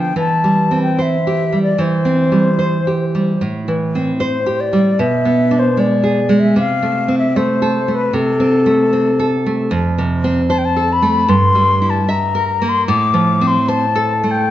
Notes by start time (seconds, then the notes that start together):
Already playing: D3 F3
0.00 G5
0.16 E3 A5
0.44 G3
0.71 C4
0.83 G5
0.99 C5 E5
1.27 G4
1.52 G3
1.63 D5
1.78 E3 C5
2.05 C4
2.32 G3
2.59 C5
2.87 G4
3.15 G3
3.41 A2
3.68 E3
3.95 C4
4.20 C5
4.46 G4
4.60 D5
4.73 G3
4.99 B2 E5
5.25 B3
5.51 D4
5.59 C5
5.77 G#3 D5
6.04 G#4
6.29 G#3
6.40 E5
6.56 C3 F5
6.82 A3
7.08 C4
7.18 E5
7.36 A3 C5
7.62 A4
7.88 A3
7.95 B4
8.13 C3 A4
8.40 C4
8.66 A3
8.93 C4
9.19 A4
9.46 A3
9.71 F2
9.98 C3
10.24 C4
10.49 C5 A5
10.58 G5
10.65 A5
10.76 A4
10.93 B5
11.02 A3
11.28 G2 C6
11.55 G3
11.82 E4
11.90 A5
12.09 E5 A#5
12.35 A#4
12.62 A#3
12.69 C6
12.88 A2 D6
13.14 F3
13.41 C4
13.47 C6
13.68 C5 A5
13.95 A4
14.24 A3
14.31 G5